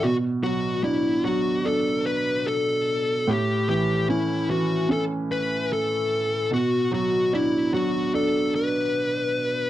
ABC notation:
X:1
M:4/4
L:1/8
Q:1/4=74
K:Bm
V:1 name="Lead electric guitar"
F F E F A B A2 | G G E F A B A2 | F F E F A B3 |]
V:2 name="Upright piano" clef=bass
B,, F, D F, D4 | A,, E, C E, C4 | B,, F, D F, D4 |]